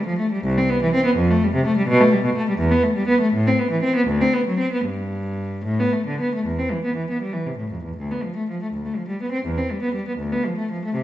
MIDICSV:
0, 0, Header, 1, 2, 480
1, 0, Start_track
1, 0, Key_signature, 0, "major"
1, 0, Tempo, 499584
1, 425, Time_signature, 6, 3, 24, 8
1, 900, Tempo, 478088
1, 2820, Tempo, 504626
1, 4260, Tempo, 524017
1, 6180, Tempo, 497100
1, 10597, End_track
2, 0, Start_track
2, 0, Title_t, "Cello"
2, 0, Program_c, 0, 42
2, 59, Note_on_c, 0, 53, 74
2, 178, Note_off_c, 0, 53, 0
2, 179, Note_on_c, 0, 57, 62
2, 300, Note_off_c, 0, 57, 0
2, 308, Note_on_c, 0, 55, 74
2, 422, Note_on_c, 0, 36, 90
2, 425, Note_off_c, 0, 55, 0
2, 542, Note_off_c, 0, 36, 0
2, 554, Note_on_c, 0, 60, 72
2, 668, Note_on_c, 0, 59, 84
2, 669, Note_off_c, 0, 60, 0
2, 785, Note_off_c, 0, 59, 0
2, 794, Note_on_c, 0, 52, 70
2, 903, Note_off_c, 0, 52, 0
2, 903, Note_on_c, 0, 60, 78
2, 1019, Note_off_c, 0, 60, 0
2, 1019, Note_on_c, 0, 59, 83
2, 1118, Note_on_c, 0, 41, 88
2, 1137, Note_off_c, 0, 59, 0
2, 1246, Note_off_c, 0, 41, 0
2, 1268, Note_on_c, 0, 57, 82
2, 1384, Note_off_c, 0, 57, 0
2, 1402, Note_on_c, 0, 55, 72
2, 1507, Note_on_c, 0, 48, 77
2, 1511, Note_off_c, 0, 55, 0
2, 1621, Note_off_c, 0, 48, 0
2, 1627, Note_on_c, 0, 57, 76
2, 1738, Note_on_c, 0, 55, 73
2, 1741, Note_off_c, 0, 57, 0
2, 1846, Note_on_c, 0, 47, 100
2, 1856, Note_off_c, 0, 55, 0
2, 1970, Note_off_c, 0, 47, 0
2, 1972, Note_on_c, 0, 57, 74
2, 2088, Note_on_c, 0, 55, 81
2, 2096, Note_off_c, 0, 57, 0
2, 2213, Note_off_c, 0, 55, 0
2, 2218, Note_on_c, 0, 47, 69
2, 2323, Note_on_c, 0, 57, 81
2, 2335, Note_off_c, 0, 47, 0
2, 2447, Note_off_c, 0, 57, 0
2, 2463, Note_on_c, 0, 55, 71
2, 2551, Note_on_c, 0, 40, 90
2, 2577, Note_off_c, 0, 55, 0
2, 2682, Note_off_c, 0, 40, 0
2, 2682, Note_on_c, 0, 59, 82
2, 2801, Note_on_c, 0, 57, 72
2, 2812, Note_off_c, 0, 59, 0
2, 2925, Note_on_c, 0, 55, 73
2, 2929, Note_off_c, 0, 57, 0
2, 3037, Note_on_c, 0, 59, 75
2, 3049, Note_off_c, 0, 55, 0
2, 3158, Note_on_c, 0, 57, 70
2, 3167, Note_off_c, 0, 59, 0
2, 3279, Note_on_c, 0, 45, 85
2, 3288, Note_off_c, 0, 57, 0
2, 3409, Note_off_c, 0, 45, 0
2, 3409, Note_on_c, 0, 60, 65
2, 3522, Note_on_c, 0, 59, 67
2, 3536, Note_off_c, 0, 60, 0
2, 3642, Note_on_c, 0, 52, 60
2, 3651, Note_off_c, 0, 59, 0
2, 3753, Note_on_c, 0, 60, 77
2, 3768, Note_off_c, 0, 52, 0
2, 3876, Note_on_c, 0, 59, 74
2, 3883, Note_off_c, 0, 60, 0
2, 3985, Note_on_c, 0, 38, 78
2, 4005, Note_off_c, 0, 59, 0
2, 4119, Note_off_c, 0, 38, 0
2, 4119, Note_on_c, 0, 60, 69
2, 4234, Note_on_c, 0, 59, 65
2, 4250, Note_off_c, 0, 60, 0
2, 4356, Note_on_c, 0, 54, 63
2, 4365, Note_off_c, 0, 59, 0
2, 4473, Note_on_c, 0, 60, 55
2, 4483, Note_off_c, 0, 54, 0
2, 4590, Note_on_c, 0, 59, 62
2, 4602, Note_off_c, 0, 60, 0
2, 4710, Note_on_c, 0, 43, 69
2, 4722, Note_off_c, 0, 59, 0
2, 5435, Note_on_c, 0, 45, 66
2, 5439, Note_off_c, 0, 43, 0
2, 5568, Note_off_c, 0, 45, 0
2, 5572, Note_on_c, 0, 59, 62
2, 5689, Note_on_c, 0, 57, 55
2, 5699, Note_off_c, 0, 59, 0
2, 5818, Note_off_c, 0, 57, 0
2, 5821, Note_on_c, 0, 50, 55
2, 5942, Note_off_c, 0, 50, 0
2, 5946, Note_on_c, 0, 59, 52
2, 6063, Note_off_c, 0, 59, 0
2, 6079, Note_on_c, 0, 57, 62
2, 6178, Note_on_c, 0, 40, 50
2, 6185, Note_off_c, 0, 57, 0
2, 6295, Note_off_c, 0, 40, 0
2, 6305, Note_on_c, 0, 60, 45
2, 6421, Note_off_c, 0, 60, 0
2, 6431, Note_on_c, 0, 52, 47
2, 6543, Note_off_c, 0, 52, 0
2, 6553, Note_on_c, 0, 59, 43
2, 6661, Note_off_c, 0, 59, 0
2, 6663, Note_on_c, 0, 52, 43
2, 6776, Note_off_c, 0, 52, 0
2, 6801, Note_on_c, 0, 59, 44
2, 6905, Note_off_c, 0, 59, 0
2, 6909, Note_on_c, 0, 55, 45
2, 7019, Note_off_c, 0, 55, 0
2, 7022, Note_on_c, 0, 52, 46
2, 7139, Note_off_c, 0, 52, 0
2, 7147, Note_on_c, 0, 48, 40
2, 7254, Note_on_c, 0, 45, 44
2, 7263, Note_off_c, 0, 48, 0
2, 7378, Note_off_c, 0, 45, 0
2, 7384, Note_on_c, 0, 41, 39
2, 7505, Note_off_c, 0, 41, 0
2, 7510, Note_on_c, 0, 40, 39
2, 7630, Note_off_c, 0, 40, 0
2, 7636, Note_on_c, 0, 38, 51
2, 7754, Note_off_c, 0, 38, 0
2, 7775, Note_on_c, 0, 59, 39
2, 7885, Note_off_c, 0, 59, 0
2, 7894, Note_on_c, 0, 53, 48
2, 8004, Note_off_c, 0, 53, 0
2, 8015, Note_on_c, 0, 57, 47
2, 8121, Note_off_c, 0, 57, 0
2, 8144, Note_on_c, 0, 53, 46
2, 8244, Note_off_c, 0, 53, 0
2, 8272, Note_on_c, 0, 57, 42
2, 8367, Note_off_c, 0, 57, 0
2, 8371, Note_on_c, 0, 38, 43
2, 8475, Note_off_c, 0, 38, 0
2, 8495, Note_on_c, 0, 57, 44
2, 8598, Note_off_c, 0, 57, 0
2, 8600, Note_on_c, 0, 53, 44
2, 8710, Note_off_c, 0, 53, 0
2, 8710, Note_on_c, 0, 55, 45
2, 8822, Note_off_c, 0, 55, 0
2, 8849, Note_on_c, 0, 59, 42
2, 8939, Note_on_c, 0, 60, 52
2, 8950, Note_off_c, 0, 59, 0
2, 9054, Note_off_c, 0, 60, 0
2, 9070, Note_on_c, 0, 40, 52
2, 9179, Note_off_c, 0, 40, 0
2, 9193, Note_on_c, 0, 60, 43
2, 9302, Note_off_c, 0, 60, 0
2, 9327, Note_on_c, 0, 55, 47
2, 9427, Note_on_c, 0, 59, 47
2, 9428, Note_off_c, 0, 55, 0
2, 9535, Note_off_c, 0, 59, 0
2, 9544, Note_on_c, 0, 55, 46
2, 9652, Note_off_c, 0, 55, 0
2, 9675, Note_on_c, 0, 59, 44
2, 9769, Note_on_c, 0, 38, 57
2, 9777, Note_off_c, 0, 59, 0
2, 9884, Note_off_c, 0, 38, 0
2, 9909, Note_on_c, 0, 59, 52
2, 10017, Note_off_c, 0, 59, 0
2, 10042, Note_on_c, 0, 53, 46
2, 10145, Note_off_c, 0, 53, 0
2, 10157, Note_on_c, 0, 57, 50
2, 10264, Note_off_c, 0, 57, 0
2, 10289, Note_on_c, 0, 53, 42
2, 10393, Note_off_c, 0, 53, 0
2, 10418, Note_on_c, 0, 57, 55
2, 10517, Note_on_c, 0, 48, 58
2, 10519, Note_off_c, 0, 57, 0
2, 10597, Note_off_c, 0, 48, 0
2, 10597, End_track
0, 0, End_of_file